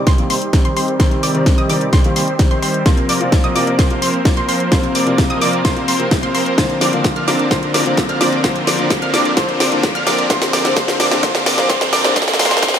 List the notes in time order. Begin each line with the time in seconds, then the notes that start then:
Already playing: C3 D#3 G3 C4, riser
0.07 D#3 G3 C4 G4 C5 C6, kick, snare, closed hi-hat
0.18 C3 D#3 G3 A#3, closed hi-hat
0.30 D#3 G3 C4 G4 C5 C6, open hi-hat
0.42 closed hi-hat
0.53 C3 D#3 G3 C4, kick, snare, closed hi-hat
0.65 D#3 G3 C4 G4 C5 C6, closed hi-hat
0.77 D#3 G3 C4 G4 C5 C6, open hi-hat
0.88 closed hi-hat
0.99 C3 D#3 G3 C4 G4 C5 C6, kick, snare, closed hi-hat
1.11 closed hi-hat
1.23 D#3 G3 C4 G4 D5 D6, open hi-hat
1.34 C3 D#3 G3 C4, closed hi-hat
1.46 kick, snare, closed hi-hat
1.58 D#3 G3 C4 G4 D#5 D#6, closed hi-hat
1.69 C3 D#3 G3 C4 G4 D5 D6, open hi-hat
1.81 closed hi-hat
1.93 C4 C5 C6, kick, snare, closed hi-hat
2.04 C3 D#3 G3 A#3, closed hi-hat
2.16 D#3 G3 C4 G4 C5 C6, open hi-hat
2.28 closed hi-hat
2.39 C3 D#3 G3 C4, kick, snare, closed hi-hat
2.51 D#3 G3 C4 G4 C5 C6, closed hi-hat
2.63 D#3 G3 C4 G4 C5 C6, open hi-hat
2.74 closed hi-hat
2.85 C3 F3 A#3 C4 A#4 C6, kick, snare, closed hi-hat
2.97 closed hi-hat
3.09 F3 A#3 C4 A#4 D5 D6, open hi-hat
3.20 C3 F3 A#3 C4, closed hi-hat
3.32 kick, snare, closed hi-hat
3.44 F3 A#3 C4 A#4 D#5 D#6, closed hi-hat
3.55 C3 F3 A#3 C4 A#4 D5 D6, open hi-hat
3.67 closed hi-hat
3.79 F3 C4 C5 C6, kick, snare, closed hi-hat
3.90 C3 F3 A#3 C4, closed hi-hat
4.02 F3 A#3 C4 A#4 C5 C6, open hi-hat
4.25 C3 F3 A#3 C4, kick, snare, closed hi-hat
4.37 F3 A#3 C4 A#4 C5 C6, closed hi-hat
4.49 F3 A#3 C4 A#4 C5 C6, open hi-hat
4.60 closed hi-hat
4.71 C3 F3 A#3 C4 C6, kick, snare, closed hi-hat
4.83 closed hi-hat
4.95 F3 A#3 C4 A#4 D5 D6, open hi-hat
5.06 C3 F3 A#3 C4, closed hi-hat
5.18 kick, snare, closed hi-hat
5.30 F3 A#3 C4 A#4 D#5 D#6, closed hi-hat
5.41 C3 F3 A#3 C4 A#4 D5 D6, open hi-hat
5.53 closed hi-hat
5.65 C4 C5 C6, kick, snare, closed hi-hat
5.76 C3 F3 A#3 C4, closed hi-hat
5.88 F3 A#3 C4 A#4 C5 C6, open hi-hat
5.99 C3 F3 A#3 C4, closed hi-hat
6.11 kick, snare, closed hi-hat
6.22 C3 F3 A#3 C4 A#4 C5 C6, closed hi-hat
6.35 F3 A#3 C4 A#4 C5 C6, open hi-hat
6.46 closed hi-hat
6.57 D3 F3 A#3 C4 D4 A#4 C6, kick, snare, closed hi-hat
6.70 closed hi-hat
6.81 F3 C4 D4 A#4 D5 D6, snare, open hi-hat
6.92 D3 F3 A#3 C4, closed hi-hat
7.04 kick, snare, closed hi-hat
7.16 F3 C4 D4 A#4 F5 F6, closed hi-hat
7.27 D3 F3 A#3 C4 D4 A#4 D5 D6, snare, open hi-hat
7.39 closed hi-hat
7.50 D3 F3 A#3 C4 C5 C6, kick, snare, closed hi-hat
7.63 closed hi-hat
7.74 F3 C4 D4 A#4 D5 D6, snare, open hi-hat
7.85 D3 F3 A#3 C4, closed hi-hat
7.97 kick, snare, closed hi-hat
8.09 F3 C4 D4 A#4 F5 F6, closed hi-hat
8.20 D3 F3 A#3 C4 D4 A#4 D5 D6, snare, open hi-hat
8.32 closed hi-hat
8.43 D3 F3 A#3 C4 D4 A#4 C5 C6, kick, snare, closed hi-hat
8.56 closed hi-hat
8.67 F3 C4 D4 A#4 D5 D6, snare, open hi-hat
8.78 D3 F3 A#3 C4, closed hi-hat
8.90 kick, snare, closed hi-hat
9.02 F3 C4 D4 A#4 F5 F6, closed hi-hat
9.13 D3 F3 A#3 C4 D4 A#4 D5 D6, snare, open hi-hat
9.25 closed hi-hat
9.36 D3 F3 A#3 C4 C6, kick, snare, closed hi-hat
9.49 closed hi-hat
9.60 F3 C4 D4 A#4 D5 D6, snare, open hi-hat
9.71 D3 F3 A#3 C4, closed hi-hat
9.83 kick, snare, closed hi-hat
9.95 F3 C4 D4 A#4 F5 F6, closed hi-hat
10.06 D3 F3 A#3 C4 D4 A#4 D5 D6, snare, open hi-hat
10.18 closed hi-hat
10.29 D3 F3 A#3 C4 D4 A#4 C5 C6, kick, snare, closed hi-hat
10.42 snare, closed hi-hat
10.53 F3 C4 D4 A#4 D5 D6, snare, open hi-hat
10.64 D3 F3 A#3 C4, snare, closed hi-hat
10.76 D3 F3 A#3 C4 D4 A#4 C5 C6, kick, snare, closed hi-hat
10.88 snare, closed hi-hat
11.00 F3 C4 D4 A#4 D5 D6, snare, open hi-hat
11.11 D3 F3 A#3 C4, snare, closed hi-hat
11.22 D3 F3 A#3 C4 D4 A#4 C5 C6, kick, snare, closed hi-hat
11.35 snare, closed hi-hat
11.46 F3 C4 D4 A#4 D5 D6, snare, open hi-hat
11.57 D3 F3 A#3 C4, snare, closed hi-hat
11.69 D3 F3 A#3 C4 A#4 C5 C6, kick, snare, closed hi-hat
11.81 snare, closed hi-hat
11.93 F3 C4 D4 A#4 D5 D6, snare, open hi-hat
12.04 D3 F3 A#3 C4, snare, closed hi-hat
12.15 D3 F3 A#3 C4 D4 A#4 C5 C6, kick, snare, closed hi-hat
12.22 snare
12.28 snare, closed hi-hat
12.34 snare
12.39 D3 F3 A#3 C4 D4 A#4 C5 C6, snare, open hi-hat
12.45 snare
12.51 snare, closed hi-hat
12.57 snare
12.62 D3 F3 A#3 C4 D4 A#4 C5 C6, kick, snare, closed hi-hat
12.68 snare
12.74 snare, closed hi-hat